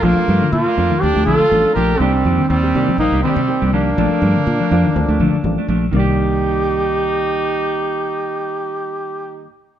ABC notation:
X:1
M:4/4
L:1/16
Q:"Swing 16ths" 1/4=122
K:Cdor
V:1 name="Duduk"
F4 F4 G2 A4 B2 | C4 C4 E2 C4 D2- | D12- D2 z2 | G16- |
G16 |]
V:2 name="Clean electric guitar"
[F,A,DF] [A,DF] [F,A,DF] z2 [A,DF] [F,A,DF] z2 [A,DF] [F,A,DF] z2 [A,DF] [F,A,DF] z | [B,DG] [B,DG] [E,B,DG] z2 [B,DG] [E,B,DG] z2 [B,DG] [E,B,DG] z2 [B,DG] [E,B,DG] z | [F,A,D] [A,D] [F,A,D] z2 [A,D] [F,D] z2 [A,D] [F,A,D] z2 [A,D] [F,A,D] z | [E,B,G]16- |
[E,B,G]16 |]
V:3 name="Reed electric piano"
[F,CDA]4 z2 [F,A,CD]2 [F,A,CD]2 z2 [F,A,CD]2 z2 | [E,G,B,D]4 z2 [E,G,B,D]2 [E,G,B,C]2 z2 [E,G,B,C]2 z2 | [F,CDA]4 z2 [F,A,CF]2 [F,A,CD]2 z2 [F,A,CD]2 z2 | [E,G,B,d]16- |
[E,G,B,d]16 |]
V:4 name="Trumpet"
B,4 B,4 D2 F4 G2 | G,4 G,4 B,2 G,4 B,2- | B,12- B,2 z2 | E16- |
E16 |]
V:5 name="Clean electric guitar" clef=bass
F,2 z D,2 z2 E,2 z D,2 G,2 F,2 | z3 E,2 G,2 F,2 z E,2 G,2 F,2 | F,2 z D,2 F,2 E,2 z D,2 G,2 F,2 | C,2 z12 z2 |
z16 |]
V:6 name="Fingered electric bass" clef=bass
B,,, z G,, z B,, z F,, z D,, D,, B,,, z A,,, z B,,,2 | C,,2 F,, z E,,2 C, z B,,, C,, z C, z C,,3 | B,,, z G,, z B,, z F,, z D,, D,, B,,, z A,,, z B,,,2 | C,,16- |
C,,16 |]